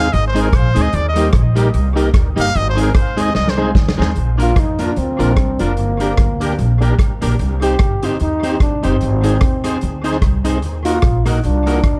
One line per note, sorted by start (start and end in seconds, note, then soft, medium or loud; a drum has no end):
0.00 0.14 F5 loud
0.13 0.48 G#1 loud
0.13 0.26 D#5 loud
0.13 closed hi-hat medium
0.28 0.39 C5 medium
0.34 0.48 G#3 medium
0.34 0.48 C4 medium
0.34 0.48 D#4 medium
0.34 0.48 D#4 loud
0.34 0.49 G#4 medium
0.34 0.48 G#4 medium
0.34 0.49 C5 loud
0.34 closed hi-hat medium
0.41 0.57 A#4 medium
0.53 0.73 A#1 medium
0.53 0.83 C5 loud
0.53 kick loud
0.53 cross-stick loud
0.53 closed hi-hat medium
0.74 0.91 D2 loud
0.74 0.88 G#3 medium
0.74 0.89 C4 medium
0.74 0.88 D#4 loud
0.74 0.89 D#4 medium
0.74 0.88 G#4 medium
0.74 0.89 G#4 medium
0.74 0.89 C5 loud
0.74 closed hi-hat loud
0.82 0.97 D#5 loud
0.93 1.28 D#2 loud
0.93 1.08 D5 loud
0.93 closed hi-hat medium
1.09 1.27 D#5 medium
1.15 1.29 G3 medium
1.15 1.29 A#3 medium
1.15 1.29 D#4 loud
1.15 1.29 G4 medium
1.15 1.30 G4 loud
1.15 1.29 A#4 loud
1.15 closed hi-hat loud
1.33 1.68 A#1 loud
1.33 kick loud
1.33 cross-stick loud
1.33 closed hi-hat medium
1.55 1.69 G3 medium
1.55 1.69 A#3 medium
1.55 1.69 D#4 loud
1.55 1.69 G4 medium
1.55 1.69 G4 loud
1.55 1.69 A#4 loud
1.55 closed hi-hat loud
1.74 2.08 C2 loud
1.74 closed hi-hat medium
1.95 2.09 G3 medium
1.95 2.09 A#3 loud
1.95 2.09 D#4 loud
1.95 2.09 G4 medium
1.95 2.10 G4 medium
1.95 2.09 A#4 loud
1.95 closed hi-hat medium
2.14 2.34 D2 loud
2.14 kick loud
2.14 cross-stick loud
2.14 closed hi-hat medium
2.36 2.52 G1 medium
2.36 2.49 G3 medium
2.36 2.50 A#3 medium
2.36 2.49 D#4 medium
2.36 2.50 D#4 medium
2.36 2.49 G4 medium
2.36 2.50 G4 loud
2.36 2.50 A#4 loud
2.36 closed hi-hat loud
2.40 2.59 F5 loud
2.54 2.89 G#1 loud
2.54 2.69 D#5 loud
2.54 closed hi-hat medium
2.69 2.81 C5 loud
2.76 2.90 G#3 medium
2.76 2.90 C4 medium
2.76 2.89 D#4 medium
2.76 2.90 D#4 loud
2.76 2.90 G#4 medium
2.76 2.90 G#4 loud
2.76 2.90 C5 loud
2.76 closed hi-hat loud
2.82 2.94 A#4 medium
2.95 3.29 D#2 loud
2.95 3.23 C5 medium
2.95 kick loud
2.95 cross-stick loud
2.95 closed hi-hat medium
3.17 3.30 G#3 loud
3.17 3.30 C4 medium
3.17 3.30 D#4 loud
3.17 3.30 D#4 medium
3.17 3.30 G#4 medium
3.17 3.31 G#4 loud
3.17 3.31 C5 loud
3.17 closed hi-hat loud
3.22 3.35 D#5 medium
3.35 3.70 C2 loud
3.35 3.51 D#5 loud
3.35 snare medium
3.48 3.70 C5 medium
3.48 snare medium
3.57 3.71 G#3 medium
3.57 3.71 C4 medium
3.57 3.70 D#4 loud
3.57 3.71 D#4 medium
3.57 3.71 G#4 medium
3.57 3.71 G#4 loud
3.57 3.71 C5 loud
3.75 3.95 D2 loud
3.75 kick loud
3.75 snare medium
3.89 snare loud
3.97 4.14 D#2 medium
3.97 4.11 G#3 medium
3.97 4.11 C4 loud
3.97 4.11 D#4 loud
3.97 4.11 D#4 medium
3.97 4.11 G#4 medium
3.97 4.11 G#4 loud
3.97 4.11 C5 loud
4.02 snare loud
4.16 4.50 A#1 loud
4.16 closed hi-hat medium
4.37 4.51 A#3 medium
4.37 4.51 D4 medium
4.37 4.51 F4 medium
4.37 4.52 F4 medium
4.37 4.51 A#4 medium
4.37 4.52 A#4 loud
4.37 closed hi-hat loud
4.42 4.60 F4 loud
4.56 4.91 F2 loud
4.56 4.83 D#4 loud
4.56 kick loud
4.56 cross-stick loud
4.56 closed hi-hat medium
4.79 4.92 A#3 medium
4.79 4.92 D4 medium
4.79 4.99 D4 medium
4.79 4.92 F4 medium
4.79 4.92 A#4 loud
4.79 closed hi-hat medium
4.96 5.21 D2 medium
4.96 5.63 C4 loud
4.96 closed hi-hat medium
5.19 5.37 A#1 medium
5.19 5.32 A#3 medium
5.19 5.32 D4 medium
5.19 5.32 F4 medium
5.19 5.33 A#4 loud
5.19 5.33 A#4 medium
5.19 closed hi-hat medium
5.36 5.56 C2 loud
5.36 kick loud
5.36 cross-stick loud
5.36 closed hi-hat medium
5.59 5.78 F1 medium
5.59 5.73 A#3 medium
5.59 6.82 A#3 loud
5.59 5.72 D4 medium
5.59 5.73 D4 medium
5.59 5.73 F4 medium
5.59 5.73 A#4 loud
5.59 5.73 A#4 medium
5.59 closed hi-hat loud
5.77 6.12 G1 medium
5.77 closed hi-hat medium
6.00 6.13 A#3 medium
6.00 6.13 D4 medium
6.00 6.13 G4 medium
6.00 6.14 G4 medium
6.00 6.13 A#4 loud
6.00 6.14 A#4 medium
6.00 closed hi-hat loud
6.17 6.52 D2 loud
6.17 kick loud
6.17 cross-stick loud
6.17 closed hi-hat medium
6.40 6.54 A#3 medium
6.40 6.53 D4 medium
6.40 6.54 D4 medium
6.40 6.54 G4 medium
6.40 6.54 A#4 loud
6.40 6.54 A#4 medium
6.40 closed hi-hat loud
6.59 6.93 A#1 loud
6.59 closed hi-hat medium
6.81 6.94 A#3 medium
6.81 6.94 D4 medium
6.81 6.94 G4 medium
6.81 6.95 G4 medium
6.81 6.94 A#4 loud
6.81 6.95 A#4 medium
6.81 closed hi-hat medium
6.99 7.19 C2 medium
6.99 kick loud
6.99 cross-stick loud
6.99 closed hi-hat medium
7.21 7.37 A#1 medium
7.21 7.34 A#3 medium
7.21 7.34 D4 medium
7.21 7.35 D4 medium
7.21 7.34 G4 medium
7.21 7.35 G4 medium
7.21 7.35 A#4 loud
7.21 7.35 A#4 medium
7.21 closed hi-hat loud
7.39 7.74 C2 loud
7.39 closed hi-hat medium
7.61 7.75 C4 medium
7.61 7.75 D#4 loud
7.61 7.75 D#4 medium
7.61 7.75 G4 medium
7.61 8.06 G4 loud
7.61 7.75 C5 medium
7.61 7.76 C5 loud
7.61 closed hi-hat loud
7.79 8.14 G1 loud
7.79 kick loud
7.79 cross-stick loud
7.79 closed hi-hat medium
8.02 8.16 C4 medium
8.02 8.15 D#4 loud
8.02 8.16 D#4 medium
8.02 8.21 D#4 loud
8.02 8.15 G4 medium
8.02 8.16 G4 medium
8.02 8.16 C5 loud
8.02 8.16 C5 medium
8.02 closed hi-hat loud
8.20 8.55 D#2 medium
8.20 8.59 D#4 loud
8.20 closed hi-hat medium
8.43 8.56 C4 medium
8.43 8.56 D#4 loud
8.43 8.56 D#4 medium
8.43 8.56 G4 medium
8.43 8.56 C5 loud
8.43 8.56 C5 medium
8.43 closed hi-hat medium
8.60 8.86 C2 medium
8.60 8.87 D4 loud
8.60 kick loud
8.60 cross-stick loud
8.60 closed hi-hat medium
8.83 8.99 G1 medium
8.83 8.96 C4 medium
8.83 10.06 C4 medium
8.83 8.96 D#4 loud
8.83 8.96 D#4 medium
8.83 8.96 G4 medium
8.83 8.97 G4 medium
8.83 8.97 C5 medium
8.83 8.97 C5 loud
8.83 closed hi-hat medium
9.01 9.36 G#1 loud
9.01 closed hi-hat medium
9.23 9.36 C4 medium
9.23 9.37 D#4 medium
9.23 9.37 G#4 medium
9.23 9.37 C5 medium
9.23 9.37 C5 loud
9.23 closed hi-hat loud
9.41 9.76 D#2 medium
9.41 kick loud
9.41 cross-stick loud
9.41 closed hi-hat medium
9.64 9.77 C4 medium
9.64 9.77 D#4 medium
9.64 9.77 G#4 medium
9.64 9.77 G#4 loud
9.64 9.77 C5 loud
9.64 9.78 C5 medium
9.64 cross-stick medium
9.64 closed hi-hat loud
9.81 10.17 D2 loud
9.81 closed hi-hat medium
10.04 10.17 C4 medium
10.04 10.17 D#4 medium
10.04 10.18 G#4 medium
10.04 10.18 C5 medium
10.04 10.18 C5 loud
10.04 closed hi-hat medium
10.13 cross-stick medium
10.22 10.63 C2 medium
10.22 kick loud
10.22 cross-stick loud
10.22 closed hi-hat medium
10.44 10.58 C4 medium
10.44 10.58 D#4 medium
10.44 10.58 G#4 medium
10.44 10.58 C5 loud
10.44 closed hi-hat loud
10.62 10.97 D#2 loud
10.62 closed hi-hat medium
10.85 10.98 A#3 medium
10.85 10.98 D#4 medium
10.85 11.28 F4 loud
10.85 10.98 F#4 medium
10.85 10.99 F#4 medium
10.85 10.99 A#4 medium
10.85 10.99 A#4 loud
10.85 closed hi-hat loud
11.02 11.38 A#1 loud
11.02 kick loud
11.02 cross-stick loud
11.02 closed hi-hat medium
11.25 11.39 A#3 medium
11.25 11.39 D#4 medium
11.25 11.44 D#4 medium
11.25 11.39 D#4 medium
11.25 11.39 F#4 medium
11.25 11.39 A#4 medium
11.25 11.39 A#4 loud
11.25 cross-stick medium
11.25 closed hi-hat loud
11.44 11.79 C2 loud
11.44 12.00 D4 loud
11.44 closed hi-hat medium
11.66 11.79 A#3 medium
11.66 11.79 D#4 medium
11.66 11.80 D#4 medium
11.66 11.79 F#4 medium
11.66 11.80 F#4 medium
11.66 11.80 A#4 loud
11.66 closed hi-hat medium
11.83 12.00 D2 loud
11.83 kick loud
11.83 cross-stick loud
11.83 closed hi-hat medium